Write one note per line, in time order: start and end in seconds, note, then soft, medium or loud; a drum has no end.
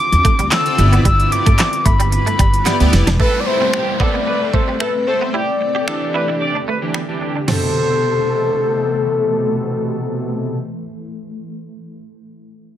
0.00 0.76 D3 medium
0.00 0.76 C4 medium
0.00 0.76 F4 medium
0.00 0.47 D6 loud
0.12 0.22 E2 medium
0.12 closed hi-hat medium
0.25 0.33 A3 medium
0.25 kick loud
0.25 closed hi-hat medium
0.39 0.49 D2 medium
0.39 0.46 G3 medium
0.39 closed hi-hat medium
0.51 0.60 A3 medium
0.51 0.61 C4 medium
0.51 0.61 F4 medium
0.51 0.62 A4 medium
0.51 0.62 D5 medium
0.51 1.01 E6 loud
0.51 snare medium
0.51 clap medium
0.51 clap loud
0.51 closed hi-hat medium
0.66 0.78 C4 medium
0.66 0.78 F4 medium
0.66 0.79 A4 medium
0.66 0.78 D5 medium
0.66 closed hi-hat soft
0.78 0.99 G1 loud
0.78 3.17 G3 medium
0.78 1.65 B3 medium
0.78 1.65 E4 medium
0.78 3.17 E4 medium
0.78 1.65 G4 medium
0.78 3.17 B4 medium
0.78 1.65 D5 medium
0.78 muted clean electric guitar stroke soft
0.78 closed hi-hat medium
0.92 1.00 B3 medium
0.92 closed hi-hat medium
1.05 1.25 G1 loud
1.05 1.13 G3 loud
1.05 1.33 E6 loud
1.05 kick loud
1.05 closed hi-hat loud
1.20 closed hi-hat medium
1.32 1.87 D6 loud
1.32 muted clean electric guitar stroke soft
1.32 closed hi-hat medium
1.46 1.56 G2 loud
1.46 1.53 A3 medium
1.46 kick loud
1.46 closed hi-hat medium
1.59 muted clean electric guitar stroke soft
1.59 snare medium
1.59 clap medium
1.59 clap loud
1.59 closed hi-hat medium
1.73 closed hi-hat medium
1.85 2.16 G1 medium
1.85 1.93 A3 medium
1.85 2.12 B5 loud
1.85 kick loud
1.85 closed hi-hat medium
2.00 2.07 G3 medium
2.00 closed hi-hat medium
2.12 2.89 B5 loud
2.12 muted clean electric guitar stroke soft
2.12 closed hi-hat medium
2.26 2.33 A3 medium
2.26 closed hi-hat medium
2.39 2.59 G1 medium
2.39 2.47 G3 medium
2.39 kick loud
2.39 closed hi-hat medium
2.54 closed hi-hat medium
2.66 2.74 B3 medium
2.66 2.76 B3 medium
2.66 2.76 E4 medium
2.66 2.76 G4 medium
2.66 2.76 D5 medium
2.66 snare medium
2.66 clap medium
2.66 closed hi-hat medium
2.80 2.90 D2 medium
2.80 3.08 B3 loud
2.80 3.08 E4 medium
2.80 3.08 G4 medium
2.80 3.08 D5 loud
2.80 closed hi-hat soft
2.93 3.04 F1 medium
2.93 muted clean electric guitar stroke soft
2.93 snare medium
2.93 closed hi-hat medium
3.07 3.16 E1 medium
3.07 3.14 D4 medium
3.07 snare loud
3.07 closed hi-hat medium
3.19 3.29 A3 medium
3.19 3.27 A3 medium
3.19 5.32 A3 medium
3.19 3.29 C4 medium
3.19 5.32 C4 medium
3.19 3.37 A4 loud
3.19 5.32 A4 medium
3.19 3.42 B4 loud
3.19 3.29 B4 medium
3.19 kick loud
3.19 downlifter medium
3.33 3.79 A3 medium
3.33 3.80 C4 medium
3.33 3.80 C5 medium
3.40 3.48 D5 medium
3.46 3.64 E4 medium
3.46 4.01 C5 loud
3.46 muted clean electric guitar stroke soft
3.61 3.68 C4 medium
3.73 3.91 G4 medium
3.73 finger snap loud
3.73 muted clean electric guitar stroke soft
4.00 4.74 A3 medium
4.00 4.08 B3 medium
4.00 4.74 C4 medium
4.00 4.09 A4 medium
4.00 4.75 B4 medium
4.00 4.55 D5 loud
4.00 kick loud
4.14 4.21 B3 medium
4.27 4.44 B4 medium
4.27 muted clean electric guitar stroke soft
4.54 4.61 A3 medium
4.54 4.63 A4 medium
4.54 4.81 C5 loud
4.54 kick medium
4.68 4.75 G3 medium
4.80 4.88 A3 medium
4.80 4.89 A4 medium
4.80 5.09 B4 medium
4.80 finger snap loud
5.07 5.34 A3 medium
5.07 5.34 C4 medium
5.07 5.16 A4 medium
5.07 5.35 C5 medium
5.07 5.34 C5 medium
5.07 muted clean electric guitar stroke soft
5.21 5.28 B3 medium
5.34 7.46 E2 medium
5.34 7.46 D3 medium
5.34 5.42 E4 medium
5.34 7.46 G4 medium
5.34 5.51 G4 loud
5.34 6.95 D5 loud
5.61 muted clean electric guitar stroke soft
5.75 5.82 G4 medium
5.75 5.83 G4 medium
5.87 6.53 E3 medium
5.87 6.53 D4 medium
5.87 6.53 G4 medium
5.87 6.05 A4 medium
5.87 finger snap loud
5.87 muted clean electric guitar stroke soft
6.14 6.22 E4 medium
6.14 6.23 B4 medium
6.28 6.35 E4 medium
6.41 6.59 D5 medium
6.41 muted clean electric guitar stroke soft
6.55 6.62 D4 medium
6.68 6.76 A3 medium
6.68 6.77 B4 medium
6.82 7.00 E3 medium
6.82 7.00 D4 medium
6.82 7.00 G4 medium
6.94 7.02 B3 medium
6.94 finger snap loud
7.09 7.36 E3 medium
7.09 7.36 D4 medium
7.09 7.37 G4 medium
7.21 muted clean electric guitar stroke soft
7.36 7.43 D4 medium
7.48 10.56 B2 medium
7.48 10.56 C3 medium
7.48 10.56 E3 medium
7.48 10.56 A3 medium
7.48 7.64 C4 medium
7.48 10.56 A4 medium
7.48 10.56 A4 loud
7.48 9.05 C5 medium
7.48 snare medium
7.48 floor tom loud
7.48 crash medium